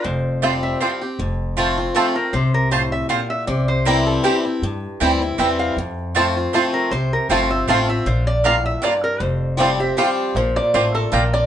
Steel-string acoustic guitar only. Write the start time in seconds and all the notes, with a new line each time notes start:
0.04 F2
0.42 F3 G3 C4 G4
0.81 F3 G3 C4 G4
1.01 C4 G4
1.19 F2
1.57 F3 A3 C4 F4
1.77 C4 F4
1.95 F3 A3 C4 F4
2.15 C4 F4
2.34 C3
2.72 A2
3.09 A#2
3.47 C3
3.86 E3 G3 C4 E4
4.24 E3 G3 C4 E4
4.45 C4 E4
4.63 G2
5.01 E3 G3 C4 E4
5.22 C4 E4
5.39 E3 G3 C4 E4
5.78 F2
6.15 F3 A3 C4 F4
6.37 C4 F4
6.54 F3 A3 C4 F4
6.93 C3
7.30 F3 A3 C4 F4
7.50 C4 F4
7.68 F3 A3 C4 F4
7.89 C4 F4
8.06 A#2
8.45 A2
8.82 G2
9.20 F2
9.57 F3 G3 C4 G4
9.80 C4 G4
9.97 F3 G3 C4 G4
10.37 A#2
10.74 A3
11.12 A#2